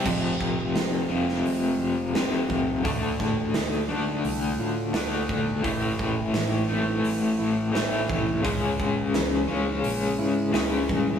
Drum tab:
CC |x---------------|----------------|----------------|----------------|
HH |----o---o---o---|o---o---o---o---|o---o---o---o---|o---o---o---o---|
SD |----o--o----o---|--o-o-------o---|----o-------o---|----o-------o---|
BD |o-o-----------o-|o-o-----------o-|o-o-----------o-|o-o-----------o-|